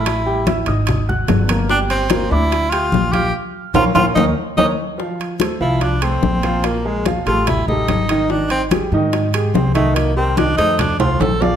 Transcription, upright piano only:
0.00 0.19 A3 medium
0.00 0.19 A4 medium
0.00 0.19 A5 medium
0.26 0.43 G3 medium
0.26 0.43 G4 medium
0.26 0.43 G5 medium
0.47 0.64 E4 medium
0.47 0.64 E5 medium
0.47 0.64 E6 medium
0.67 1.01 D#4 medium
0.67 1.01 D#5 medium
0.67 1.01 D#6 medium
1.09 1.42 F#4 medium
1.09 1.42 F#5 medium
1.09 1.42 F#6 medium
1.50 1.66 A#3 medium
1.50 1.66 A#4 medium
1.50 1.67 A#5 medium
1.70 2.04 G3 medium
1.70 2.04 G4 medium
1.70 2.04 G5 medium
2.11 2.28 A#3 medium
2.11 2.28 A#4 medium
2.11 2.28 A#5 medium
2.31 2.65 D4 medium
2.31 2.65 D5 medium
2.31 2.66 D6 medium
2.72 3.06 G4 medium
2.72 3.06 G5 medium
2.72 3.07 G6 medium
3.14 3.31 F4 medium
3.14 3.31 F5 medium
3.14 3.31 F6 medium
3.75 3.89 A#4 loud
3.75 3.88 C#5 loud
3.75 3.89 F5 medium
3.96 4.09 A#4 medium
3.96 4.10 C#5 medium
3.96 4.09 F5 loud
4.17 4.31 A#4 loud
4.17 4.31 C#5 medium
4.17 4.30 D#5 medium
4.58 4.71 A#4 loud
4.58 4.72 C#5 loud
4.58 4.71 D#5 loud
4.98 5.32 F3 medium
4.98 5.32 F4 medium
4.98 5.33 F5 medium
5.40 5.57 A3 medium
5.40 5.57 A4 medium
5.40 5.57 C5 medium
5.61 5.95 F3 medium
5.61 5.95 F4 medium
5.61 5.95 F5 medium
6.02 6.36 A3 medium
6.02 6.36 A4 medium
6.02 6.36 C5 medium
6.44 6.78 F3 medium
6.44 6.78 F4 medium
6.44 6.78 F5 medium
6.85 7.02 G#3 medium
6.85 7.02 G#4 medium
6.85 7.02 A#4 medium
7.07 7.23 F3 medium
7.07 7.24 F4 medium
7.07 7.24 F5 medium
7.27 7.61 G3 medium
7.27 7.61 G4 medium
7.27 7.61 A4 medium
7.69 8.03 G3 medium
7.69 8.03 G4 medium
7.69 8.03 A4 medium
8.10 8.27 D#3 medium
8.10 8.27 D#4 loud
8.10 8.27 D#5 medium
8.31 8.64 D#3 medium
8.31 8.65 D#4 medium
8.31 8.65 D#5 medium
8.72 8.89 G3 medium
8.72 8.89 G4 medium
8.72 8.89 G#4 medium
8.93 9.27 D#3 medium
8.93 9.27 D#4 medium
8.93 9.27 D#5 medium
9.34 9.68 G#3 medium
9.34 9.68 G4 medium
9.34 9.68 G#4 medium
9.75 10.09 D#3 medium
9.75 10.09 D#4 medium
9.75 10.09 D#5 medium
10.16 10.34 G3 medium
10.16 10.34 G4 medium
10.16 10.34 A#4 medium
10.37 10.54 D#3 medium
10.37 10.54 D#4 medium
10.37 10.55 D#5 medium
10.58 10.92 A3 medium
10.58 10.92 A4 medium
10.58 10.92 C5 medium
10.99 11.33 A3 medium
10.99 11.34 A4 medium
10.99 11.34 C5 medium
11.41 11.56 F3 medium
11.41 11.56 F4 medium
11.41 11.56 F5 medium

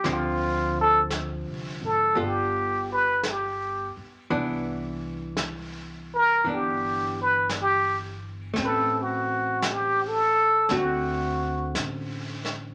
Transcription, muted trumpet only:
0.00 0.15 G4 medium
0.13 0.80 F4 medium
0.81 1.00 A4 loud
1.85 2.26 A4 medium
2.24 2.92 G4 medium
2.92 3.31 B4 medium
3.30 3.98 G4 medium
6.14 6.55 A#4 loud
6.54 7.20 G4 medium
7.21 7.51 B4 medium
7.61 8.01 G4 medium
8.65 9.03 A4 medium
9.02 9.74 F#4 medium
9.72 10.09 G4 medium
10.07 10.79 A4 medium
10.77 11.79 F#4 medium

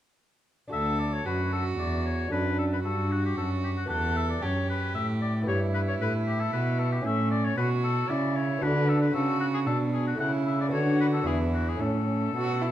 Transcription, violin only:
0.71 1.27 A4 medium
1.26 2.31 F#4 medium
2.32 2.84 D4 soft
2.84 3.88 F#4 medium
3.90 4.44 A4 medium
4.42 5.47 G4 medium
5.47 7.02 E4 medium
7.05 7.57 C#4 medium
7.59 8.12 F#4 medium
8.10 8.63 E4 medium
8.62 9.14 D4 medium
9.14 9.68 F#4 medium
9.66 10.18 D4 medium
10.19 10.71 E4 medium
10.72 11.28 F#4 medium
11.26 11.81 E4 medium
11.79 12.29 C#4 medium
12.35 12.63 F#4 medium
12.62 12.71 E4 medium

